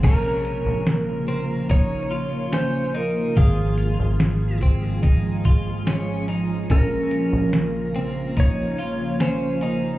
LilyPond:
<<
  \new Staff \with { instrumentName = "Electric slide guitar" } { \time 4/4 \key bes \minor \tempo 4 = 72 bes'2 des''4 c''8 bes'8 | aes'4. r2 r8 | bes'2 des''4 c''4 | }
  \new Staff \with { instrumentName = "Clean electric guitar" } { \time 4/4 \key bes \minor des'4 r8 c'8 ees'8 f'8 des'8 ees'8 | f'4 r8 c'8 ees'8 f'8 des'8 ees'8 | des'4 r8 c'8 ees'8 f'8 des'8 ees'8 | }
  \new Staff \with { instrumentName = "Ambient pad" } { \time 4/4 \key bes \minor << { <des bes f'>1 | <aes aes'>1 | <des bes f'>1 | } \\ { f1~ | f1~ | f1 | } >> }
  \new Staff \with { instrumentName = "Analog synth bass" } { \clef bass \time 4/4 \key bes \minor bes,,8. bes,,2.~ bes,,16 | aes,,8. aes,,2.~ aes,,16 | bes,,8. bes,,2.~ bes,,16 | }
  \new DrumStaff \with { instrumentName = "Drums" } \drummode { \time 4/4 <cymc hh bd>8 hh8 <hh sn>8 hh8 <hh bd>8 hh8 <hh sn>8 hh8 | <hh bd>8 hh8 <hh sn>8 <hh bd>8 <hh bd>8 <hh bd>8 <hh sn>8 hh8 | <hh bd>8 hh8 <hh sn>8 hh8 <hh bd>8 hh8 <hh sn>8 hh8 | }
>>